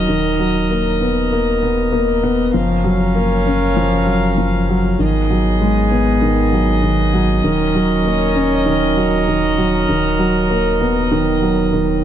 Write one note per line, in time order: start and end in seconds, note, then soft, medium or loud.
0.00 0.09 D#3 medium
0.00 0.11 F#3 medium
0.00 0.11 A#3 medium
0.00 0.11 C#4 medium
0.00 2.49 A#4 medium
0.00 2.50 D#5 medium
0.09 2.51 D#1 medium
0.09 0.38 D#3 medium
0.39 0.69 F#3 medium
0.70 0.88 A#3 medium
1.01 1.30 B3 medium
1.32 1.61 A#3 medium
1.62 1.91 B3 medium
1.92 2.22 A#3 medium
2.23 2.52 B3 medium
2.54 4.96 F#1 medium
2.54 2.83 F3 medium
2.54 4.97 C#4 medium
2.54 4.96 A#4 medium
2.54 4.97 F5 medium
2.84 3.14 F#3 medium
3.15 3.33 A#3 medium
3.46 3.75 C#4 medium
3.76 3.94 F3 medium
4.07 4.36 F#3 medium
4.38 4.67 F3 medium
4.69 4.98 F#3 medium
4.99 7.41 G#1 medium
4.99 5.28 D#3 medium
4.99 7.42 B3 medium
4.99 7.42 G#4 medium
4.99 12.04 D#5 medium
5.30 5.59 F#3 medium
5.61 5.78 G#3 medium
5.91 6.20 B3 medium
6.22 6.39 D#3 medium
6.52 6.81 F#3 medium
6.83 7.12 D#3 medium
7.14 7.42 F#3 medium
7.43 9.86 D#1 medium
7.43 7.73 D#3 medium
7.43 12.04 F#3 medium
7.43 9.86 C#4 medium
7.43 12.04 A#4 medium
7.75 8.04 F#3 medium
8.05 8.22 A#3 medium
8.35 8.64 C#4 medium
8.66 8.84 D#3 medium
8.97 9.26 F#3 medium
9.27 9.57 D#3 medium
9.58 9.87 F#3 medium
9.89 12.04 D#1 medium
9.89 10.18 D#3 medium
10.19 10.48 F#3 medium
10.50 10.67 A#3 medium
10.81 11.10 B3 medium
11.12 11.29 D#3 medium
11.42 11.71 F#3 medium
11.73 12.02 D#3 medium